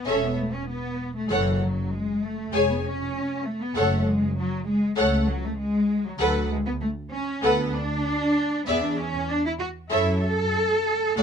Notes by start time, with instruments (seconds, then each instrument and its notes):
0.07 double bass section E1, cello section C#4, viola section A4, violin section C#5 E5
0.23 cello section B3
0.38 cello section A3
0.54 cello section C#4
0.69 cello section B3
1.16 cello section A3
1.30 double bass section F#1, cello section E3, viola section A4, violin section C#5 F#5
1.61 cello section F#3
1.92 cello section G#3
2.23 cello section A3
2.53 double bass section F1, cello section G#3, viola section G#4, violin section C#5 G#5
2.70 cello section B3
2.84 cello section C#4
3.45 cello section A3
3.62 cello section B3
3.75 double bass section F#1, cello section A3, viola section A4, violin section C#5 F#5
4.07 cello section G#3
4.37 cello section F#3
4.68 cello section G#3
4.97 double bass section C#2, cello section A3, viola section A4, violin section C#5 F#5
5.29 cello section F#3
5.45 cello section A3
5.59 cello section G#3
6.06 cello section F#3
6.19 double bass section D2, cello section F#3, viola section A4, violin section B4 F#5
6.51 cello section G#3
6.67 cello section B3
6.81 cello section A3
7.12 cello section C#4
7.43 double bass section D2, cello section B3, viola section A4, violin section B4 F#5
7.74 cello section D4
8.67 double bass section E2, cello section B3, viola section G#4, violin section D5 E5
8.84 cello section D4
8.98 cello section C#4
9.29 cello section D4
9.46 cello section E4
9.59 cello section F#4
9.91 double bass section F#2, cello section E4, viola section A4, violin section C#5 E5
10.23 cello section A4
11.17 double bass section D2, cello section A3, viola section A4, violin section D5 F#5